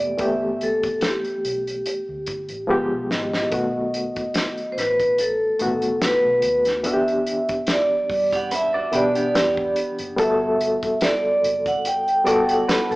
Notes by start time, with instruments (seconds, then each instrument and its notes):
Already playing: fingered electric bass F1, reed electric piano E3 A3 A#3 B3 G4, vibraphone D5
0.18 fingered electric bass G1, reed electric piano E3 A3 B3 G4, vibraphone E5, kick, closed hi-hat
0.61 vibraphone A4, closed hi-hat
0.83 muted fingered electric bass stroke, kick, closed hi-hat
1.01 vibraphone G4, snare, closed hi-hat
1.25 closed hi-hat
1.45 fingered electric bass B1, closed hi-hat
1.67 closed hi-hat
1.86 closed hi-hat
2.09 fingered electric bass D2
2.26 fingered electric bass G1, kick, closed hi-hat
2.49 fingered electric bass A1, closed hi-hat
2.67 fingered electric bass G1, reed electric piano F3 G#3 B3 G4
2.92 fingered electric bass B1
3.11 fingered electric bass G#1, vibraphone D#5, snare
3.33 snare
3.50 fingered electric bass B1, reed electric piano D#3 A3 B3 F#4, kick, closed hi-hat
3.94 closed hi-hat
4.16 muted fingered electric bass stroke, kick, closed hi-hat
4.34 snare, closed hi-hat
4.58 closed hi-hat
4.72 vibraphone C5
4.78 fingered electric bass A1, vibraphone B4, snare, closed hi-hat
5.00 kick, closed hi-hat
5.18 vibraphone A4, closed hi-hat
5.59 fingered electric bass A1, reed electric piano D#3 A3 B3 F#4, closed hi-hat
5.82 closed hi-hat
6.02 vibraphone B4, snare, closed hi-hat
6.25 fingered electric bass B1
6.42 fingered electric bass D#2, closed hi-hat
6.65 snare, closed hi-hat
6.83 fingered electric bass E2, reed electric piano E3 B3 D4 F#4, closed hi-hat
6.88 vibraphone E5
6.94 reed electric piano G4
7.08 closed hi-hat
7.27 closed hi-hat
7.49 muted fingered electric bass stroke, kick, closed hi-hat
7.67 snare, closed hi-hat
7.71 vibraphone D5
8.10 fingered electric bass G2, kick, open hi-hat
8.32 clean electric guitar B3 G4, vibraphone F#5, kick, closed hi-hat
8.51 clean electric guitar D4 B4, vibraphone E5, closed hi-hat
8.74 clean electric guitar F#4 D5
8.91 fingered electric bass B2, reed electric piano E3 B3 D4 G4, clean electric guitar D4 B4, closed hi-hat
8.96 vibraphone D5
9.15 clean electric guitar B3 G4, closed hi-hat
9.35 fingered electric bass E2, snare, closed hi-hat
9.57 kick
9.76 closed hi-hat
9.99 fingered electric bass F#1, closed hi-hat
10.16 fingered electric bass G1, reed electric piano G3 B3 F#4 A4, kick, closed hi-hat
10.21 vibraphone E5
10.61 closed hi-hat
10.83 muted fingered electric bass stroke, kick, closed hi-hat
11.01 vibraphone D5, snare, closed hi-hat
11.43 fingered electric bass F#1, closed hi-hat
11.66 vibraphone F#5, kick, closed hi-hat
11.85 vibraphone G5, closed hi-hat
12.08 closed hi-hat
12.24 fingered electric bass F#1, reed electric piano G3 B3 F#4 A4, clean electric guitar F#4 D5, closed hi-hat
12.49 vibraphone F#5, closed hi-hat
12.69 clean electric guitar D4 B4, snare, closed hi-hat
12.91 fingered electric bass G1, clean electric guitar A4, closed hi-hat